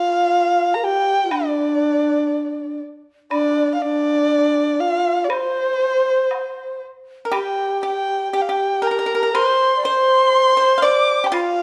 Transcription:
0.00 0.77 F4 medium
0.00 0.76 F5 loud
0.74 0.85 A#4 medium
0.74 0.85 A#5 medium
0.84 1.25 G4 medium
0.84 1.33 G5 loud
1.25 1.33 F4 soft
1.31 2.81 D4 medium
1.31 2.81 D5 medium
1.31 high woodblock medium
3.31 3.78 D4 medium
3.31 3.71 D5 loud
3.31 high woodblock medium
3.75 3.84 F5 medium
3.82 4.82 D4 medium
3.82 4.82 D5 loud
4.80 5.31 F4 medium
4.80 5.26 F5 loud
5.24 5.31 D5 medium
5.29 6.82 C5 medium
5.29 high woodblock medium
6.31 high woodblock soft
6.31 low woodblock soft
7.25 7.33 A#4 soft
7.32 7.80 G4 medium
7.32 8.30 G4 medium
7.32 7.81 G5 medium
7.32 high woodblock medium
7.83 8.30 G4 medium
7.83 8.31 G5 medium
8.32 9.34 G4 medium
8.32 8.46 G4 medium
8.32 8.43 G5 medium
8.42 8.53 F5 medium
8.49 8.82 G4 medium
8.49 8.89 G5 medium
8.82 8.90 A#4 medium
8.87 8.97 A#4 medium
8.87 9.37 A#5 medium
8.99 9.05 A#4 medium
9.06 9.13 A#4 medium
9.15 9.21 A#4 medium
9.23 9.29 A#4 medium
9.33 9.76 C5 medium
9.33 9.80 C5 medium
9.33 9.84 C6 medium
9.33 high woodblock medium
9.77 9.87 D5 medium
9.85 10.54 C5 medium
9.85 10.56 C5 medium
9.85 10.85 C6 loud
10.57 11.28 C5 loud
10.57 10.74 C5 medium
10.78 10.82 F5 medium
10.82 11.22 D5 medium
10.82 11.28 D6 loud
11.24 11.31 G4 medium
11.24 11.35 G5 medium
11.32 11.63 F4 medium
11.32 11.63 F5 medium
11.32 high woodblock medium

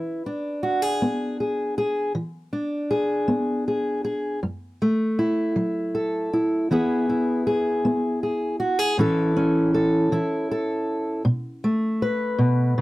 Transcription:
0.00 0.57 E3 medium
0.00 0.26 E4 soft
0.00 0.62 B4 soft
0.26 2.12 D4 soft
0.63 0.82 F#4 medium
0.82 1.39 G#4 soft
1.02 1.71 B3 soft
1.40 1.77 G#4 soft
1.78 2.12 G#4 medium
2.15 2.84 E3 medium
2.53 4.39 D4 soft
2.91 3.67 G#4 medium
3.28 3.97 B3 medium
3.68 4.03 G#4 soft
4.05 4.39 G#4 soft
4.43 5.12 F#2 medium
4.82 6.71 A3 soft
5.19 6.33 E4 medium
5.56 6.25 F#3 medium
5.95 6.66 A4 soft
6.33 6.72 E4 soft
6.71 7.39 E3 medium
6.71 7.84 B3 soft
6.71 7.08 E4 soft
6.71 7.46 G#4 soft
7.09 8.94 E4 soft
7.47 8.22 G#4 medium
7.85 8.53 B3 medium
8.23 8.59 G#4 soft
8.60 8.79 F#4 medium
8.79 8.98 G#4 soft
8.98 9.66 A2 medium
8.98 10.11 E3 medium
8.98 9.35 C#4 medium
8.98 10.11 E4 medium
8.98 9.74 A4 medium
9.36 11.21 C#4 soft
9.74 10.50 A4 medium
10.12 10.80 E3 medium
10.12 11.21 E4 medium
10.51 11.22 A4 medium
11.25 11.93 B2 medium
11.64 12.81 A3 medium
12.02 12.81 B4 medium
12.38 12.77 B2 medium
12.78 12.81 C#3 medium

